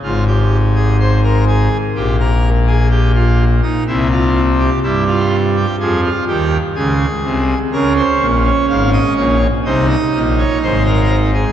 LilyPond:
<<
  \new Staff \with { instrumentName = "Pipe organ" } { \time 4/4 \key bes \minor \tempo 4 = 62 << { r1 | r1 | bes'16 c''8 des''16 f''16 ees''16 des''8 c''16 ees''8 des''16 c''16 bes'8 aes'16 | } \\ { f'16 g'8 aes'16 c''16 bes'16 aes'8 g'16 bes'8 aes'16 g'16 f'8 ees'16 | e'16 f'8 g'16 e'16 f'8 g'16 aes'16 f'16 g'8 aes'4 | des'2 ees'2 | } >> }
  \new Staff \with { instrumentName = "Pipe organ" } { \clef bass \time 4/4 \key bes \minor <aes,, aes,>2 <bes,, bes,>2 | <c, c>4 <g, g>4 <f, f>8 <ees, ees>8 <des, des>8 <c, c>8 | <des, des>8 <bes,, bes,>8 <aes,, aes,>8 <bes,, bes,>8 <c, c>8 <bes,, bes,>8 <aes,, aes,>4 | }
>>